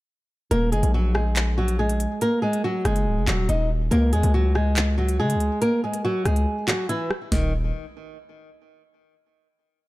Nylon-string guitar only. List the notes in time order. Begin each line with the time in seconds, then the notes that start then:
0.51 A#3 A#4
0.72 G#3 G#4
0.94 F#3 F#4
1.14 G#3 G#4
1.58 F#3 F#4
1.79 G#3 G#4
2.22 A#3 A#4
2.42 G#3 G#4
2.64 F#3 F#4
2.86 G#3 G#4
3.27 F#3 F#4
3.49 D#4 D#5
3.91 A#3 A#4
4.13 G#3 G#4
4.34 F#3 F#4
4.55 G#3 G#4
4.98 F#3 F#4
5.20 G#3 G#4
5.62 A#3 A#4
5.84 G#3 G#4
6.05 F#3 F#4
6.26 G#3 G#4
6.67 F#3 F#4
6.89 E3 E4
7.32 D#3